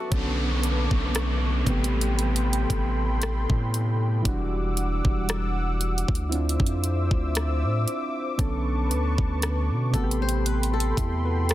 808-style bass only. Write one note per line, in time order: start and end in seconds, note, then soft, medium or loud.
0.12 0.88 B1 loud
0.91 1.64 B1 loud
1.67 2.66 A1 loud
2.70 3.47 A1 loud
3.50 4.22 A2 loud
4.25 5.02 E1 loud
5.05 6.04 E1 loud
6.09 6.58 D2 loud
6.60 7.10 F2 loud
7.11 7.65 D2 loud
7.63 7.86 A2 loud
8.39 8.92 B1 loud
8.91 9.17 D2 loud
9.18 9.72 D2 loud
9.70 9.93 B2 medium
9.94 10.93 A1 loud
10.97 11.54 E2 loud